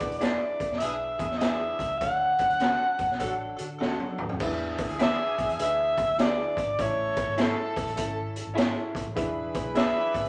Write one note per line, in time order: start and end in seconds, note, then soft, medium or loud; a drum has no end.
0.00 0.56 E3 medium
0.00 0.16 D4 medium
0.00 0.16 G#4 medium
0.00 0.17 B4 medium
0.00 0.18 D5 medium
0.00 0.16 F#5 medium
0.00 kick medium
0.00 closed hi-hat medium
0.11 0.38 E1 medium
0.11 closed hi-hat soft
0.18 0.69 D4 medium
0.18 0.38 E4 medium
0.18 0.70 G#4 medium
0.18 0.38 G#4 medium
0.18 0.70 B4 medium
0.18 0.80 D5 medium
0.18 0.39 D5 medium
0.18 0.29 D#5 medium
0.18 closed hi-hat medium
0.23 snare medium
0.27 0.73 E5 medium
0.60 0.70 G#1 medium
0.60 kick medium
0.60 closed hi-hat medium
0.70 0.80 E1 medium
0.70 snare soft
0.78 1.15 B1 medium
0.78 1.30 D4 medium
0.78 0.94 D4 medium
0.78 0.94 E4 medium
0.78 0.94 G#4 loud
0.78 1.30 G#4 medium
0.78 1.30 B4 medium
0.78 1.37 E5 medium
0.78 1.30 E5 medium
0.78 closed hi-hat loud
1.18 1.72 E2 medium
1.18 1.25 D4 medium
1.18 1.25 E4 medium
1.18 1.25 G#4 medium
1.18 kick medium
1.18 closed hi-hat medium
1.30 snare soft
1.38 1.88 D4 medium
1.38 1.90 D4 medium
1.38 1.87 E4 medium
1.38 1.58 E4 medium
1.38 1.87 G#4 loud
1.38 1.58 G#4 medium
1.38 1.90 G#4 medium
1.38 1.90 B4 medium
1.38 2.00 E5 medium
1.38 snare loud
1.38 closed hi-hat medium
1.42 1.58 D5 medium
1.42 1.90 E5 medium
1.79 1.99 C#2 medium
1.79 kick medium
1.79 closed hi-hat medium
1.98 2.35 D2 medium
1.98 2.95 D3 medium
1.98 2.29 D4 medium
1.98 2.29 A4 medium
1.98 2.29 C#5 medium
1.98 3.79 F#5 loud
1.98 2.29 F#5 medium
1.98 kick medium
1.98 closed hi-hat medium
2.38 2.56 D4 medium
2.38 2.56 A4 medium
2.38 2.56 C#5 medium
2.38 2.56 F#5 medium
2.38 kick medium
2.38 closed hi-hat medium
2.50 2.77 D2 medium
2.50 closed hi-hat soft
2.60 2.77 C#4 medium
2.60 3.10 D4 medium
2.60 2.78 F#4 medium
2.60 2.78 A4 medium
2.60 3.10 A4 medium
2.60 3.10 C#5 medium
2.60 2.70 G#5 medium
2.60 snare medium
2.60 closed hi-hat medium
2.69 3.14 A5 medium
2.99 3.09 F#2 medium
2.99 kick medium
2.99 closed hi-hat medium
3.11 3.21 B1 medium
3.11 snare soft
3.19 3.54 A1 medium
3.19 3.69 D4 medium
3.19 3.33 D4 medium
3.19 3.33 F#4 loud
3.19 3.33 A4 loud
3.19 3.69 A4 medium
3.19 3.69 C#5 medium
3.19 3.69 F#5 medium
3.19 kick medium
3.19 closed hi-hat loud
3.56 3.79 D3 medium
3.56 3.65 D4 medium
3.56 3.65 F#4 medium
3.56 3.64 A4 medium
3.56 closed hi-hat medium
3.79 3.99 D2 medium
3.79 3.97 C#4 medium
3.79 4.27 D4 medium
3.79 4.29 D4 medium
3.79 4.26 F#4 medium
3.79 3.97 F#4 medium
3.79 4.26 A4 loud
3.79 4.30 A4 medium
3.79 3.98 A4 medium
3.79 4.30 C#5 medium
3.79 4.30 F#5 loud
3.79 snare medium
4.00 high tom medium
4.18 4.39 D#2 medium
4.18 mid tom medium
4.29 floor tom medium
4.38 4.83 E2 medium
4.38 5.35 E3 medium
4.38 6.52 D4 medium
4.38 4.89 D4 medium
4.38 6.53 E4 medium
4.38 6.52 G#4 medium
4.38 6.53 G#4 medium
4.38 4.90 G#4 medium
4.38 4.89 B4 medium
4.38 4.90 E5 loud
4.38 6.52 G#5 loud
4.38 kick loud
4.38 crash medium
4.78 kick loud
4.78 closed hi-hat medium
4.89 5.16 D2 medium
4.89 closed hi-hat medium
4.99 5.49 D4 medium
4.99 5.16 E4 medium
4.99 5.17 G#4 medium
4.99 5.49 G#4 medium
4.99 5.49 B4 medium
4.99 5.17 D5 loud
4.99 5.49 E5 medium
4.99 5.57 E5 loud
4.99 snare medium
4.99 closed hi-hat medium
5.38 5.48 B1 medium
5.38 kick medium
5.38 closed hi-hat medium
5.49 5.59 E2 loud
5.49 closed hi-hat medium
5.59 6.03 D2 medium
5.59 6.08 D4 medium
5.59 6.08 G#4 medium
5.59 6.08 B4 medium
5.59 5.68 D#5 medium
5.59 6.24 E5 loud
5.59 closed hi-hat loud
5.67 6.12 E5 medium
5.97 kick medium
5.97 closed hi-hat medium
6.10 6.52 D2 medium
6.18 6.67 D4 medium
6.18 6.35 E4 medium
6.18 6.28 G4 medium
6.18 6.36 G#4 medium
6.18 6.68 B4 medium
6.18 6.36 D5 medium
6.18 6.83 D5 medium
6.18 6.68 E5 medium
6.18 snare loud
6.18 closed hi-hat loud
6.26 6.71 G#4 medium
6.57 6.76 G#1 loud
6.57 kick loud
6.57 closed hi-hat medium
6.78 7.22 A1 medium
6.78 7.72 A3 medium
6.78 7.27 C#4 medium
6.78 8.92 C#4 medium
6.78 7.27 E4 medium
6.78 8.92 E4 medium
6.78 7.27 A4 medium
6.78 8.91 A4 loud
6.78 8.92 A4 medium
6.78 7.44 C#5 loud
6.78 7.27 E5 medium
6.78 8.91 A5 loud
6.78 kick loud
6.78 closed hi-hat medium
7.16 kick loud
7.16 closed hi-hat medium
7.28 7.54 G#1 medium
7.37 7.86 C#4 medium
7.37 7.86 E4 medium
7.37 7.54 E4 medium
7.37 7.55 G#4 loud
7.37 7.86 A4 medium
7.37 7.55 C#5 loud
7.37 7.87 E5 medium
7.37 snare medium
7.37 closed hi-hat medium
7.42 8.38 A4 medium
7.76 7.86 E1 medium
7.76 kick loud
7.76 closed hi-hat medium
7.87 7.97 A1 medium
7.87 closed hi-hat soft
7.96 8.41 G#1 medium
7.96 8.45 C#4 medium
7.96 8.45 E4 medium
7.96 8.45 A4 medium
7.96 8.45 E5 medium
7.96 kick medium
7.96 closed hi-hat loud
8.36 closed hi-hat medium
8.47 8.73 G#1 medium
8.54 9.04 C#4 loud
8.54 9.04 E4 medium
8.54 8.73 E4 medium
8.54 8.73 G#4 medium
8.54 9.04 A4 medium
8.54 8.73 C#5 medium
8.54 9.05 E5 loud
8.54 closed hi-hat loud
8.58 snare loud
8.95 9.05 B1 loud
8.95 kick medium
8.95 closed hi-hat medium
9.06 9.15 A1 medium
9.15 9.60 E1 loud
9.15 10.10 E3 medium
9.15 9.65 D4 medium
9.15 10.29 E4 medium
9.15 10.29 G#4 medium
9.15 9.64 G#4 medium
9.15 10.29 B4 medium
9.15 9.65 B4 medium
9.15 9.65 E5 loud
9.15 10.29 B5 loud
9.15 kick loud
9.15 closed hi-hat medium
9.54 kick loud
9.54 closed hi-hat medium
9.65 9.91 B1 medium
9.74 10.24 D4 medium
9.74 9.92 E4 medium
9.74 10.24 G#4 medium
9.74 9.93 G#4 medium
9.74 10.24 B4 medium
9.74 9.93 D5 loud
9.74 10.24 E5 medium
9.74 10.29 E5 loud
9.74 snare medium
9.74 closed hi-hat medium
10.14 10.24 G#1 medium
10.14 kick loud
10.14 closed hi-hat medium
10.25 10.29 C#2 medium
10.25 closed hi-hat medium